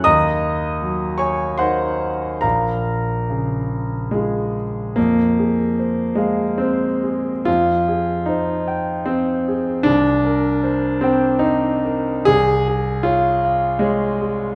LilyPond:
\new Staff \with { instrumentName = "Grand piano" } { \time 3/4 \key bes \minor \tempo 4 = 75 << { <ees'' bes'' ees'''>4. <des'' aes'' des'''>8 <c'' ges'' c'''>4 | <bes' f'' bes''>2 aes4 | \key f \minor bes4. aes8 c'4 | f'4 ees'4 c'4 |
d'4. c'8 ees'4 | aes'4 f'4 aes4 | } \\ { ees,4 ges4 <ees' bes'>4 | bes,,4 des4 <f' aes'>4 | f,8 aes'8 c''8 f''8 c''8 aes'8 | f,8 aes'8 c''8 g''8 c''8 aes'8 |
c,8 bes'8 c''8 g''8 c''8 bes'8 | c,8 aes'8 des''8 f''8 des''8 aes'8 | } >> }